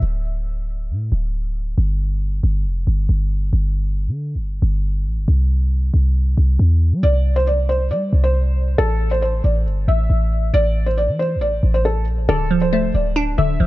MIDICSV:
0, 0, Header, 1, 4, 480
1, 0, Start_track
1, 0, Key_signature, -1, "minor"
1, 0, Tempo, 437956
1, 26, Time_signature, 4, 2, 24, 8
1, 14979, End_track
2, 0, Start_track
2, 0, Title_t, "Felt piano"
2, 0, Program_c, 0, 0
2, 7706, Note_on_c, 0, 74, 93
2, 8045, Note_off_c, 0, 74, 0
2, 8068, Note_on_c, 0, 72, 85
2, 8173, Note_off_c, 0, 72, 0
2, 8189, Note_on_c, 0, 74, 82
2, 8399, Note_off_c, 0, 74, 0
2, 8429, Note_on_c, 0, 72, 77
2, 8639, Note_off_c, 0, 72, 0
2, 8667, Note_on_c, 0, 74, 82
2, 9005, Note_off_c, 0, 74, 0
2, 9027, Note_on_c, 0, 72, 82
2, 9591, Note_off_c, 0, 72, 0
2, 9626, Note_on_c, 0, 69, 102
2, 9965, Note_off_c, 0, 69, 0
2, 9988, Note_on_c, 0, 72, 84
2, 10093, Note_off_c, 0, 72, 0
2, 10109, Note_on_c, 0, 72, 80
2, 10319, Note_off_c, 0, 72, 0
2, 10346, Note_on_c, 0, 74, 76
2, 10557, Note_off_c, 0, 74, 0
2, 10830, Note_on_c, 0, 76, 78
2, 11505, Note_off_c, 0, 76, 0
2, 11549, Note_on_c, 0, 74, 106
2, 11886, Note_off_c, 0, 74, 0
2, 11907, Note_on_c, 0, 72, 74
2, 12012, Note_off_c, 0, 72, 0
2, 12029, Note_on_c, 0, 74, 88
2, 12239, Note_off_c, 0, 74, 0
2, 12268, Note_on_c, 0, 72, 86
2, 12479, Note_off_c, 0, 72, 0
2, 12507, Note_on_c, 0, 74, 85
2, 12845, Note_off_c, 0, 74, 0
2, 12869, Note_on_c, 0, 72, 74
2, 12973, Note_off_c, 0, 72, 0
2, 12988, Note_on_c, 0, 69, 81
2, 13199, Note_off_c, 0, 69, 0
2, 13467, Note_on_c, 0, 69, 109
2, 13805, Note_off_c, 0, 69, 0
2, 13827, Note_on_c, 0, 72, 92
2, 13932, Note_off_c, 0, 72, 0
2, 13949, Note_on_c, 0, 72, 91
2, 14159, Note_off_c, 0, 72, 0
2, 14187, Note_on_c, 0, 74, 86
2, 14398, Note_off_c, 0, 74, 0
2, 14664, Note_on_c, 0, 76, 85
2, 14979, Note_off_c, 0, 76, 0
2, 14979, End_track
3, 0, Start_track
3, 0, Title_t, "Synth pluck"
3, 0, Program_c, 1, 84
3, 13468, Note_on_c, 1, 50, 101
3, 13707, Note_on_c, 1, 53, 90
3, 13949, Note_on_c, 1, 57, 90
3, 14424, Note_on_c, 1, 62, 108
3, 14654, Note_off_c, 1, 50, 0
3, 14667, Note_on_c, 1, 50, 76
3, 14894, Note_off_c, 1, 53, 0
3, 14907, Note_on_c, 1, 53, 87
3, 14979, Note_off_c, 1, 50, 0
3, 14979, Note_off_c, 1, 53, 0
3, 14979, Note_off_c, 1, 57, 0
3, 14979, Note_off_c, 1, 62, 0
3, 14979, End_track
4, 0, Start_track
4, 0, Title_t, "808-style bass"
4, 0, Program_c, 2, 38
4, 27, Note_on_c, 2, 26, 111
4, 988, Note_on_c, 2, 45, 102
4, 1004, Note_off_c, 2, 26, 0
4, 1215, Note_off_c, 2, 45, 0
4, 1228, Note_on_c, 2, 26, 102
4, 1919, Note_off_c, 2, 26, 0
4, 1948, Note_on_c, 2, 31, 115
4, 2638, Note_off_c, 2, 31, 0
4, 2668, Note_on_c, 2, 31, 105
4, 2908, Note_on_c, 2, 29, 102
4, 2924, Note_off_c, 2, 31, 0
4, 3135, Note_off_c, 2, 29, 0
4, 3148, Note_on_c, 2, 31, 100
4, 3378, Note_off_c, 2, 31, 0
4, 3388, Note_on_c, 2, 31, 107
4, 3848, Note_off_c, 2, 31, 0
4, 3867, Note_on_c, 2, 31, 109
4, 4467, Note_on_c, 2, 50, 97
4, 4484, Note_off_c, 2, 31, 0
4, 4767, Note_on_c, 2, 31, 103
4, 4784, Note_off_c, 2, 50, 0
4, 5052, Note_off_c, 2, 31, 0
4, 5067, Note_on_c, 2, 31, 106
4, 5547, Note_on_c, 2, 33, 93
4, 5564, Note_off_c, 2, 31, 0
4, 5667, Note_on_c, 2, 31, 99
4, 5683, Note_off_c, 2, 33, 0
4, 5781, Note_off_c, 2, 31, 0
4, 5787, Note_on_c, 2, 36, 114
4, 6478, Note_off_c, 2, 36, 0
4, 6507, Note_on_c, 2, 36, 103
4, 6967, Note_off_c, 2, 36, 0
4, 6987, Note_on_c, 2, 36, 107
4, 7217, Note_off_c, 2, 36, 0
4, 7227, Note_on_c, 2, 40, 105
4, 7588, Note_on_c, 2, 55, 102
4, 7604, Note_off_c, 2, 40, 0
4, 7701, Note_off_c, 2, 55, 0
4, 7707, Note_on_c, 2, 36, 108
4, 8667, Note_on_c, 2, 55, 104
4, 8683, Note_off_c, 2, 36, 0
4, 8895, Note_off_c, 2, 55, 0
4, 8907, Note_on_c, 2, 36, 101
4, 9598, Note_off_c, 2, 36, 0
4, 9627, Note_on_c, 2, 33, 110
4, 10318, Note_off_c, 2, 33, 0
4, 10347, Note_on_c, 2, 33, 102
4, 10587, Note_on_c, 2, 31, 99
4, 10604, Note_off_c, 2, 33, 0
4, 10815, Note_off_c, 2, 31, 0
4, 10827, Note_on_c, 2, 33, 104
4, 11057, Note_off_c, 2, 33, 0
4, 11067, Note_on_c, 2, 33, 110
4, 11528, Note_off_c, 2, 33, 0
4, 11548, Note_on_c, 2, 33, 106
4, 12147, Note_on_c, 2, 52, 97
4, 12164, Note_off_c, 2, 33, 0
4, 12447, Note_on_c, 2, 33, 104
4, 12463, Note_off_c, 2, 52, 0
4, 12732, Note_off_c, 2, 33, 0
4, 12747, Note_on_c, 2, 33, 104
4, 13227, Note_on_c, 2, 34, 99
4, 13243, Note_off_c, 2, 33, 0
4, 13347, Note_on_c, 2, 33, 102
4, 13363, Note_off_c, 2, 34, 0
4, 13461, Note_off_c, 2, 33, 0
4, 13466, Note_on_c, 2, 26, 116
4, 14158, Note_off_c, 2, 26, 0
4, 14187, Note_on_c, 2, 26, 101
4, 14648, Note_off_c, 2, 26, 0
4, 14667, Note_on_c, 2, 26, 105
4, 14897, Note_off_c, 2, 26, 0
4, 14907, Note_on_c, 2, 29, 110
4, 14979, Note_off_c, 2, 29, 0
4, 14979, End_track
0, 0, End_of_file